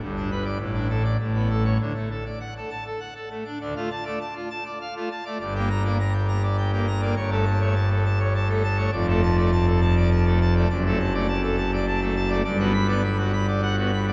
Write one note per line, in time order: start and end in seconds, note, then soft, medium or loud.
0.02 0.58 G1 medium
0.02 0.58 G2 medium
0.17 0.29 D4 medium
0.31 0.44 B4 medium
0.45 0.58 D5 medium
0.59 1.17 A1 medium
0.59 1.17 A2 medium
0.75 0.88 D4 medium
0.89 1.03 A4 medium
1.04 1.17 D5 medium
1.20 1.78 A1 medium
1.20 1.78 A2 medium
1.35 1.48 B3 medium
1.50 1.63 A4 soft
1.65 1.78 C#5 medium
1.80 1.93 D2 medium
1.80 1.93 D3 medium
1.95 2.08 A3 soft
2.11 2.24 A4 soft
2.26 2.39 D5 medium
2.40 2.54 F#5 medium
2.57 2.70 A4 medium
2.70 2.84 A5 medium
2.87 3.00 A4 medium
3.00 3.14 F#5 medium
3.15 3.29 A4 medium
3.30 3.44 A3 soft
3.45 3.58 D4 soft
3.61 3.74 D2 medium
3.61 3.73 D3 medium
3.61 3.74 D5 medium
3.76 3.89 A3 medium
3.76 3.89 F4 medium
3.91 4.04 A5 medium
4.05 4.19 A3 medium
4.05 4.19 D5 medium
4.21 4.34 A5 medium
4.36 4.49 F4 medium
4.50 4.64 A5 medium
4.65 4.78 D5 medium
4.81 4.94 F5 medium
4.96 5.09 A3 medium
4.96 5.09 F4 medium
5.11 5.24 A5 medium
5.26 5.38 A3 medium
5.26 5.38 D5 medium
5.41 7.14 G1 medium
5.41 7.14 G2 medium
5.41 5.54 D5 medium
5.56 5.69 A#3 medium
5.56 5.69 G4 medium
5.70 5.83 A#5 loud
5.84 5.98 A#3 medium
5.84 5.98 D5 medium
6.00 6.13 A#5 medium
6.14 6.27 G4 medium
6.29 6.42 A#5 medium
6.43 6.56 D5 medium
6.58 6.71 G5 medium
6.73 6.86 A#3 medium
6.73 6.86 G4 medium
6.87 7.01 A#5 medium
7.02 7.15 A#3 medium
7.02 7.15 D5 medium
7.17 8.89 G1 medium
7.17 8.89 G2 medium
7.17 7.30 C#5 medium
7.31 7.45 A3 medium
7.31 7.45 A4 medium
7.46 7.59 A5 loud
7.61 7.75 A3 medium
7.61 7.75 C#5 medium
7.76 7.89 A5 medium
7.91 8.04 A4 medium
8.06 8.19 A5 medium
8.20 8.33 C#5 medium
8.35 8.48 A5 medium
8.49 8.62 A3 medium
8.49 8.62 A4 medium
8.64 8.77 A5 medium
8.77 8.91 A3 medium
8.77 8.91 C#5 medium
8.92 10.65 F1 medium
8.92 10.65 F2 medium
8.92 9.06 D5 medium
9.08 9.21 A3 medium
9.08 9.21 A4 medium
9.23 9.36 A5 loud
9.37 9.51 A3 medium
9.37 9.51 D5 medium
9.52 9.66 A5 medium
9.67 9.80 A4 medium
9.81 9.95 A5 medium
9.97 10.10 D5 medium
10.12 10.25 A5 medium
10.26 10.39 A3 medium
10.26 10.39 A4 medium
10.41 10.54 A5 medium
10.56 10.68 A3 medium
10.56 10.68 D5 medium
10.70 12.41 F#1 medium
10.70 12.41 F#2 medium
10.70 10.83 D5 medium
10.86 10.98 A3 medium
10.86 10.98 A4 medium
11.00 11.13 A5 loud
11.14 11.27 A3 medium
11.14 11.27 D5 medium
11.28 11.41 A5 medium
11.43 11.56 A4 medium
11.58 11.71 A5 medium
11.73 11.86 D5 medium
11.88 12.00 A5 medium
12.01 12.14 A3 medium
12.01 12.14 A4 medium
12.16 12.29 A5 medium
12.29 12.43 A3 medium
12.29 12.42 D5 medium
12.44 14.13 G1 medium
12.44 14.13 G2 loud
12.44 12.58 D5 medium
12.59 12.73 B3 medium
12.59 12.73 F#4 medium
12.73 12.87 B5 loud
12.89 13.02 B3 medium
12.89 13.02 D5 loud
13.04 13.17 B5 medium
13.19 13.32 F#4 medium
13.33 13.46 B5 medium
13.48 13.61 D5 loud
13.63 13.76 F#5 medium
13.78 13.91 B3 medium
13.78 13.91 F#4 medium
13.92 14.06 B5 medium
14.07 14.13 B3 medium
14.07 14.13 D5 medium